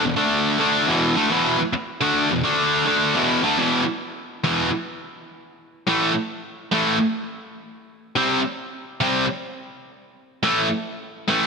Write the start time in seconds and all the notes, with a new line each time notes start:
0.03 E2 B2
0.17 D3 A3 D4
0.59 D3 A3 D4
0.87 E2 B2 E3
1.16 D3 A3
1.30 E2 B2 E3
1.59 muted distorted electric guitar stroke
1.73 muted distorted electric guitar stroke
2.01 D3 A3 D4
2.30 E2 B2
2.44 D3 A3 D4
2.86 D3 A3 D4
3.14 E2 B2 E3
3.43 D3 A3
3.57 E2 B2 E3
4.44 E2 B2 E3
5.87 A2 E3 A3
6.72 A2 E3 A3
8.16 C3 G3 C4
9.01 C3 G3 C4
10.43 A2 E3 A3
11.28 A2 E3 A3